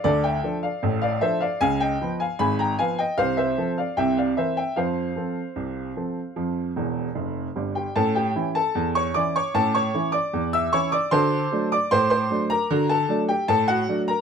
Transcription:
<<
  \new Staff \with { instrumentName = "Upright piano" } { \time 2/4 \key a \phrygian \tempo 4 = 76 <a' d''>16 <e'' g''>8 <d'' f''>8 <d'' f''>16 <c'' e''>16 <d'' f''>16 | <f'' aes''>16 <ees'' g''>8 <f'' aes''>16 <aes'' ces'''>16 <g'' bes''>16 <f'' aes''>16 <ees'' g''>16 | <c'' f''>16 <c'' e''>8 <d'' f''>16 <e'' g''>16 <d'' f''>16 <c'' e''>16 <e'' g''>16 | <c'' f''>2~ |
<c'' f''>4. r16 <g' g''>16 | <a' a''>16 <g' g''>8 <a' a''>8 <cis'' cis'''>16 <d'' d'''>16 <cis'' cis'''>16 | <a' a''>16 <cis'' cis'''>8 <d'' d'''>8 <e'' e'''>16 <cis'' cis'''>16 <d'' d'''>16 | <c'' a'' c'''>8. <d'' d'''>16 <c'' c'''>16 <c'' c'''>8 <bes' bes''>16~ |
<bes' bes''>16 <a' a''>8 <g' g''>16 <a' a''>16 <fis' fis''>8 <bes' bes''>16 | }
  \new Staff \with { instrumentName = "Upright piano" } { \clef bass \time 2/4 \key a \phrygian <d, d>8 <f d' a'>8 <a,, a,>8 <f d' a'>8 | <des, des>8 <f ces' ces''>8 <aes,, aes,>8 <f ces' ces''>8 | <c, c>8 <f c' a'>8 <c, c>8 <e c' bes'>8 | <f, f>8 <f c' a'>8 <c, c>8 <f c' a'>8 |
<f, f>8 <e,, e,>8 <f,, f,>8 <g,, g,>8 | <a, cis'>8 <e cis' e'>8 e,8 <e cis' e'>8 | <a, cis'>8 <e cis' e'>8 e,8 <e cis' e'>8 | <d fis'>8 <fis a d'>8 a,8 <fis a d'>8 |
<d fis'>8 <fis a d'>8 a,8 <fis a d'>8 | }
>>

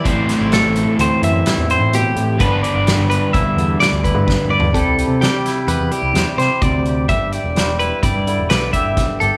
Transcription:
<<
  \new Staff \with { instrumentName = "Clean electric guitar" } { \time 5/4 \key g \major \tempo 4 = 128 c''4 a'4 c''8 e''4 c''8 g'4 | b'8 d''4 b'8 e''4 d''8 b'4 d''8 | a'4 g'4 b'8 g'4 c''8 d''4 | e''8 d''4 b'8 d''4 b'8 e''4 a'8 | }
  \new Staff \with { instrumentName = "Clean electric guitar" } { \time 5/4 \key g \major << { g'8 d'16 e'4~ e'16 c'4 e'8 c'4. | b'8 b'4. e'4 b'8 e'8 b'8 b'8 | <g e' g' b'>8 g'8 d''8 e'8 g'8 e'8 c''8 g'4 g'8 | r8 g'8 c''8 e'8 g'8 e'8 d''8 g'4 g'8 | } \\ { <a, g>4 a4. e4. b,8 a,8 | g,4 g4. d4. g,4 | c4 g4. g4. c4 | g,4 g4. d4. g,4 | } >> }
  \new Staff \with { instrumentName = "Overdriven electric guitar" } { \clef bass \time 5/4 \key g \major <a, e a c' e'>1~ <a, e a c' e'>4 | <g, d g b d'>1~ <g, d g b d'>4 | r1 r4 | r1 r4 | }
  \new Staff \with { instrumentName = "Picked electric bass" } { \clef bass \time 5/4 \key g \major a,,8 r16 a,,8 a,,8 r16 d,16 r16 fis,8 r16 e,8 a,8 r16 a,8 | g,,8 r16 g,,8 g,,8 r16 b,,16 r16 e,8 r16 d,8 g,8 r16 g,8 | c,8. c8 r8. e,16 e,16 r16 c,16 e,16 r16 c16 r16 d,4 | g,,8. e,,4~ e,,16 g,,16 g,8 e,,16 b,,8 g,,8 b,,16 r16 g,,16 r16 | }
  \new DrumStaff \with { instrumentName = "Drums" } \drummode { \time 5/4 <hh bd>8 <hh sn>8 <hh sn>8 hh8 hh8 hh8 <hh sn>8 hh8 hh8 hh8 | <hh bd>8 hh8 <hh sn>8 hh8 <hh bd>8 hh8 <hh sn>8 <hh bd>8 \tuplet 3/2 { <bd sn>8 toml8 tomfh8 } | <hh bd>8 hh8 <hh sn>8 <hh sn>8 hh8 hh8 <hh sn>8 <hh sn>8 <hh bd>8 hh8 | <hh bd>8 hh8 <hh sn>8 hh8 <hh bd>8 hh8 <hh sn>8 <hh bd>8 <hh bd sn>8 hh8 | }
>>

